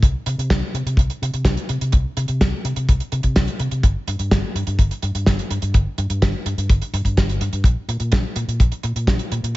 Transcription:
0.02 0.13 C2 medium
0.02 kick loud
0.02 closed hi-hat medium
0.26 0.37 C3 medium
0.26 closed hi-hat medium
0.38 0.49 C3 medium
0.38 closed hi-hat medium
0.50 0.60 C2 medium
0.50 kick loud
0.50 snare loud
0.50 closed hi-hat medium
0.74 0.84 C3 medium
0.74 closed hi-hat medium
0.86 0.96 C3 medium
0.86 closed hi-hat medium
0.97 1.08 C2 loud
0.97 kick loud
0.97 closed hi-hat medium
1.10 closed hi-hat soft
1.22 1.32 C3 medium
1.22 closed hi-hat medium
1.34 1.44 C3 medium
1.34 closed hi-hat medium
1.45 1.55 C2 medium
1.45 kick loud
1.45 snare loud
1.45 closed hi-hat medium
1.57 closed hi-hat soft
1.69 1.80 C3 medium
1.69 closed hi-hat medium
1.81 1.92 C3 medium
1.81 closed hi-hat medium
1.92 2.03 C2 medium
1.92 kick loud
1.92 closed hi-hat medium
2.17 2.27 C3 medium
2.17 closed hi-hat medium
2.28 2.39 C3 medium
2.28 closed hi-hat medium
2.41 2.51 C2 medium
2.41 kick loud
2.41 snare loud
2.41 closed hi-hat medium
2.65 2.75 C3 medium
2.65 closed hi-hat medium
2.76 2.87 C3 medium
2.76 closed hi-hat medium
2.89 2.99 C2 medium
2.89 kick loud
2.89 closed hi-hat medium
3.00 closed hi-hat soft
3.12 3.22 C3 medium
3.12 closed hi-hat medium
3.23 3.34 C3 medium
3.23 kick medium
3.23 closed hi-hat medium
3.36 3.46 C2 medium
3.36 kick loud
3.36 snare loud
3.36 closed hi-hat medium
3.48 closed hi-hat medium
3.60 3.70 C3 medium
3.60 closed hi-hat medium
3.71 3.82 C3 medium
3.71 closed hi-hat medium
3.83 3.94 G1 loud
3.83 kick loud
3.83 closed hi-hat medium
4.07 4.18 G2 medium
4.07 closed hi-hat medium
4.19 4.30 G2 medium
4.19 closed hi-hat medium
4.31 4.42 G1 medium
4.31 kick loud
4.31 snare loud
4.31 closed hi-hat medium
4.55 4.65 G2 medium
4.55 closed hi-hat medium
4.67 4.77 G2 medium
4.67 closed hi-hat medium
4.79 4.89 G1 medium
4.79 kick loud
4.79 closed hi-hat medium
4.91 closed hi-hat medium
5.02 5.13 G2 medium
5.02 closed hi-hat medium
5.15 5.25 G2 medium
5.15 closed hi-hat medium
5.26 5.37 G1 medium
5.26 kick loud
5.26 snare loud
5.26 closed hi-hat medium
5.39 closed hi-hat medium
5.50 5.61 G2 medium
5.50 closed hi-hat medium
5.62 5.73 G2 medium
5.62 closed hi-hat medium
5.74 5.84 G1 medium
5.74 kick loud
5.74 closed hi-hat medium
5.98 6.08 G2 medium
5.98 closed hi-hat medium
6.10 6.20 G2 medium
6.10 closed hi-hat medium
6.22 6.32 G1 medium
6.22 kick loud
6.22 snare loud
6.22 closed hi-hat medium
6.46 6.56 G2 medium
6.46 closed hi-hat medium
6.58 6.68 G2 medium
6.58 closed hi-hat medium
6.69 6.80 G1 medium
6.69 kick loud
6.69 closed hi-hat medium
6.82 closed hi-hat medium
6.93 7.03 G2 loud
6.93 closed hi-hat medium
7.05 7.15 G2 medium
7.05 kick medium
7.05 closed hi-hat medium
7.17 7.38 G1 medium
7.17 kick loud
7.17 snare loud
7.17 closed hi-hat medium
7.29 closed hi-hat medium
7.41 7.51 G2 loud
7.41 closed hi-hat medium
7.53 7.63 G2 medium
7.53 closed hi-hat medium
7.64 7.74 A#1 medium
7.64 kick loud
7.64 closed hi-hat medium
7.88 7.99 A#2 medium
7.88 closed hi-hat medium
8.00 8.10 A#2 medium
8.00 closed hi-hat medium
8.12 8.23 A#1 loud
8.12 kick loud
8.12 snare loud
8.12 closed hi-hat medium
8.36 8.46 A#2 medium
8.36 closed hi-hat medium
8.48 8.58 A#2 medium
8.48 closed hi-hat medium
8.60 8.70 A#1 loud
8.60 kick loud
8.60 closed hi-hat medium
8.72 closed hi-hat soft
8.83 8.94 A#2 medium
8.83 closed hi-hat medium
8.96 9.06 A#2 medium
8.96 closed hi-hat medium
9.07 9.18 A#1 medium
9.07 kick loud
9.07 snare loud
9.07 closed hi-hat medium
9.19 closed hi-hat medium
9.32 9.42 A#2 medium
9.32 closed hi-hat medium
9.43 9.53 A#2 medium
9.43 closed hi-hat medium

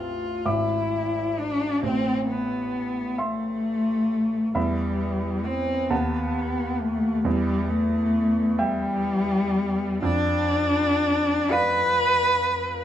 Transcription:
0.00 0.41 A1 soft
0.00 0.48 F4 soft
0.00 0.42 E5 soft
0.00 0.42 A5 soft
0.45 1.79 G#1 soft
0.45 1.41 E4 soft
0.45 1.79 E5 soft
0.45 1.79 D6 soft
1.40 1.83 D4 soft
1.83 4.52 A1 soft
1.83 2.28 C4 soft
2.29 3.21 B3 soft
3.18 4.56 A3 soft
3.18 4.51 E5 soft
3.18 4.52 C6 soft
4.55 5.87 E2 soft
4.55 5.47 G3 soft
4.55 5.86 E5 soft
4.55 5.87 B5 soft
5.46 5.92 C4 medium
5.90 7.21 D#2 soft
5.90 6.83 B3 soft
5.90 7.21 F#5 soft
5.90 7.21 A5 soft
6.81 7.25 A3 medium
7.25 10.00 E2 soft
7.25 7.71 G3 medium
7.69 8.60 A3 medium
8.59 10.03 G3 medium
8.59 10.00 E5 soft
8.59 10.00 G5 soft
10.02 12.82 F2 soft
10.02 11.53 D4 medium
11.51 12.84 B4 medium
11.51 12.82 D5 soft
11.51 12.82 F5 soft

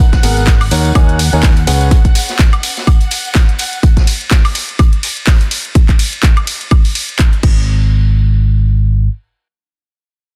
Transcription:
0.00 3.84 F#5 medium
0.12 kick medium
0.12 snare soft
0.12 closed hi-hat soft
0.23 0.69 G#1 loud
0.23 0.50 B3 medium
0.23 0.50 G#4 medium
0.23 0.50 A#4 medium
0.23 0.50 F#5 medium
0.23 closed hi-hat medium
0.23 open hi-hat loud
0.23 ride medium
0.23 tambourine medium
0.37 closed hi-hat soft
0.37 tambourine medium
0.47 kick loud
0.47 snare loud
0.47 clap loud
0.47 closed hi-hat loud
0.47 closed hi-hat medium
0.47 tambourine soft
0.61 open hi-hat medium
0.61 high woodblock medium
0.71 0.93 D#2 loud
0.71 0.89 D#4 medium
0.71 0.89 A#4 medium
0.71 0.89 C#5 medium
0.71 0.89 F#5 medium
0.71 closed hi-hat medium
0.71 open hi-hat loud
0.71 ride medium
0.71 tambourine medium
0.85 closed hi-hat soft
0.85 tambourine medium
0.95 1.30 D#2 loud
0.95 1.16 D#4 medium
0.95 1.16 A#4 medium
0.95 1.16 C#5 medium
0.95 1.16 G#5 medium
0.95 kick loud
0.95 closed hi-hat medium
0.95 high woodblock medium
1.09 closed hi-hat soft
1.19 closed hi-hat medium
1.19 open hi-hat loud
1.19 ride medium
1.19 tambourine loud
1.33 1.65 D#2 loud
1.33 1.48 D#4 medium
1.33 1.48 A#4 medium
1.33 1.48 C#5 medium
1.33 1.48 G#5 medium
1.33 closed hi-hat soft
1.33 tambourine soft
1.43 kick loud
1.43 snare loud
1.43 clap loud
1.43 closed hi-hat medium
1.43 open hi-hat medium
1.43 tambourine soft
1.56 closed hi-hat soft
1.67 1.91 C#2 loud
1.67 1.94 C#4 loud
1.67 1.94 G#4 medium
1.67 1.94 B4 medium
1.67 1.94 F#5 loud
1.67 closed hi-hat medium
1.67 open hi-hat loud
1.67 ride medium
1.67 tambourine medium
1.81 closed hi-hat soft
1.81 tambourine medium
1.91 kick loud
1.91 closed hi-hat medium
1.91 tambourine soft
2.05 kick medium
2.05 closed hi-hat soft
2.15 closed hi-hat medium
2.15 open hi-hat loud
2.15 ride medium
2.15 tambourine medium
2.28 snare medium
2.28 closed hi-hat soft
2.28 tambourine soft
2.39 kick loud
2.39 snare loud
2.39 clap loud
2.39 closed hi-hat medium
2.53 closed hi-hat soft
2.53 high woodblock medium
2.63 closed hi-hat medium
2.63 open hi-hat loud
2.63 ride medium
2.63 tambourine medium
2.77 snare soft
2.77 closed hi-hat soft
2.77 tambourine medium
2.87 kick loud
2.87 closed hi-hat medium
2.87 high woodblock medium
3.00 closed hi-hat soft
3.11 closed hi-hat medium
3.11 open hi-hat loud
3.11 ride medium
3.11 tambourine medium
3.25 closed hi-hat soft
3.25 tambourine soft
3.34 kick loud
3.34 snare loud
3.34 clap loud
3.34 closed hi-hat medium
3.34 tambourine soft
3.49 closed hi-hat soft
3.59 closed hi-hat medium
3.59 open hi-hat loud
3.59 ride medium
3.59 tambourine medium
3.73 closed hi-hat soft
3.73 tambourine soft
3.83 kick loud
3.83 closed hi-hat medium
3.97 kick medium
3.97 snare medium
3.97 closed hi-hat soft
4.07 closed hi-hat medium
4.07 open hi-hat loud
4.07 ride medium
4.21 closed hi-hat soft
4.31 kick loud
4.31 snare loud
4.31 clap loud
4.31 closed hi-hat medium
4.45 open hi-hat medium
4.45 high woodblock medium
4.55 closed hi-hat medium
4.55 open hi-hat loud
4.55 ride medium
4.69 closed hi-hat soft
4.79 kick loud
4.79 closed hi-hat medium
4.79 high woodblock medium
4.93 closed hi-hat soft
5.03 closed hi-hat medium
5.03 open hi-hat loud
5.03 ride medium
5.17 closed hi-hat soft
5.27 kick loud
5.27 snare loud
5.27 clap loud
5.27 closed hi-hat medium
5.27 open hi-hat medium
5.41 closed hi-hat soft
5.51 closed hi-hat medium
5.51 open hi-hat loud
5.51 ride medium
5.65 closed hi-hat soft
5.75 kick loud
5.75 closed hi-hat medium
5.89 kick medium
5.89 clap soft
5.89 closed hi-hat soft
5.99 open hi-hat loud
5.99 ride medium
6.13 closed hi-hat soft
6.23 kick loud
6.23 clap loud
6.23 closed hi-hat medium
6.37 closed hi-hat soft
6.37 high woodblock medium
6.47 open hi-hat loud
6.47 ride medium
6.61 closed hi-hat soft
6.71 kick loud
6.71 closed hi-hat medium
6.71 high woodblock medium
6.85 open hi-hat medium
6.95 open hi-hat loud
6.95 ride medium
7.09 closed hi-hat soft
7.19 kick loud
7.19 clap loud
7.19 closed hi-hat medium
7.33 closed hi-hat soft
7.43 9.07 G#1 loud
7.43 kick loud
7.43 crash medium

